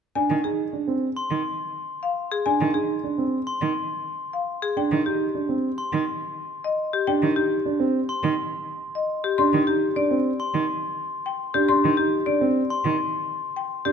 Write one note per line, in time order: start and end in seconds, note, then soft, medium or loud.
0.15 0.34 D4 medium
0.15 0.34 G#5 medium
0.30 0.41 D#3 soft
0.44 0.63 D#4 soft
0.44 0.63 G#4 soft
0.73 0.92 D4 soft
0.88 1.06 C4 soft
1.17 1.35 C6 soft
1.31 1.42 D#3 soft
2.03 2.22 F5 soft
2.32 2.50 G#4 medium
2.46 2.65 D4 medium
2.46 2.65 G#5 medium
2.61 2.72 D#3 soft
2.74 2.94 D#4 soft
2.74 2.94 G#4 soft
3.04 3.23 D4 soft
3.18 3.37 C4 soft
3.47 3.66 C6 medium
3.61 3.72 D#3 medium
4.33 4.52 F5 soft
4.62 4.81 G#4 medium
4.77 4.96 D4 medium
4.77 4.96 G5 medium
4.91 5.02 D#3 soft
5.06 5.25 D#4 soft
5.06 5.25 G4 soft
5.35 5.53 D4 soft
5.49 5.68 C4 soft
5.78 5.97 C6 soft
5.93 6.03 D#3 medium
6.64 6.83 D#5 soft
6.93 7.12 G4 medium
7.07 7.27 D4 medium
7.07 7.26 G5 medium
7.22 7.33 D#3 soft
7.36 7.55 D#4 soft
7.36 7.55 G4 medium
7.66 7.84 D4 soft
7.80 7.99 C4 medium
8.09 8.28 C6 medium
8.23 8.34 D#3 medium
8.95 9.14 D#5 soft
9.24 9.43 G4 medium
9.38 9.57 D4 medium
9.38 9.57 C6 medium
9.53 9.64 D#3 medium
9.67 9.86 D#4 medium
9.67 9.86 G4 medium
9.96 10.15 D4 soft
9.96 10.15 D5 medium
10.11 10.29 C4 medium
10.40 10.58 C6 medium
10.54 10.65 D#3 medium
11.26 11.45 G5 medium
11.54 11.68 D4 medium
11.54 11.73 G4 medium
11.68 11.88 D4 medium
11.68 11.88 C6 medium
11.84 11.95 D#3 medium
11.97 12.17 D#4 medium
11.97 12.17 G4 medium
12.26 12.46 D4 soft
12.26 12.46 D5 medium
12.41 12.60 C4 medium
12.70 12.89 C6 medium
12.85 12.96 D#3 medium
13.56 13.75 G5 soft
13.85 13.92 D4 medium
13.85 13.92 G4 medium